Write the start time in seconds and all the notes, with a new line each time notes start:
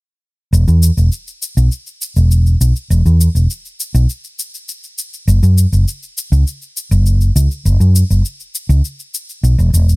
0.53 E1, shaker
0.68 E2, shaker
0.83 shaker
0.97 E1, shaker
1.12 shaker
1.27 shaker
1.42 shaker
1.57 B1, shaker
1.72 shaker
1.87 shaker
2.01 shaker
2.16 E1, shaker
2.31 shaker
2.46 shaker
2.61 B1, shaker
2.76 shaker
2.90 E1, shaker
3.06 E2, shaker
3.21 shaker
3.35 E1, shaker
3.50 shaker
3.65 shaker
3.80 shaker
3.94 B1, shaker
4.09 shaker
4.24 shaker
4.39 shaker
4.54 shaker
4.69 shaker
4.84 shaker
4.98 shaker
5.14 shaker
5.28 F#1, shaker
5.43 F#2, shaker
5.58 shaker
5.73 F#1, shaker
5.88 shaker
6.03 shaker
6.18 shaker
6.32 C#2, shaker
6.47 shaker
6.62 shaker
6.77 shaker
6.91 F#1, shaker
7.06 shaker
7.21 shaker
7.36 C#2, shaker
7.51 shaker
7.65 F#1, shaker
7.80 F#2, shaker
7.96 shaker
8.10 F#1, shaker
8.25 shaker
8.40 shaker
8.55 shaker
8.69 C#2, shaker
8.85 shaker
8.99 shaker
9.14 shaker
9.29 shaker
9.43 B1, shaker
9.58 E1, shaker
9.73 E1, shaker
9.89 shaker